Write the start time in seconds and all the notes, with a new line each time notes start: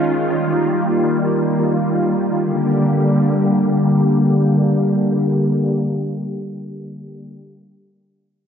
Already playing: D#3 G#3 C#4 F4
0.28 G3 A#3
2.43 D3 G3 A#3 G4